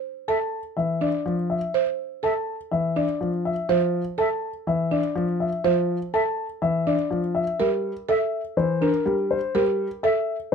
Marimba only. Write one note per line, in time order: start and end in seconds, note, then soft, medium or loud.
0.00 0.11 C5 medium
0.28 0.60 A4 medium
1.01 1.33 D4 medium
1.74 2.06 C5 medium
2.23 2.55 A4 medium
2.96 3.28 D4 medium
3.69 4.01 C5 medium
4.18 4.50 A4 medium
4.91 5.23 D4 medium
5.65 5.96 C5 medium
6.14 6.45 A4 medium
6.87 7.18 D4 medium
7.60 7.91 A#4 medium
8.09 8.40 A4 medium
8.82 9.14 D4 medium
9.55 9.87 A#4 medium
10.04 10.35 A4 medium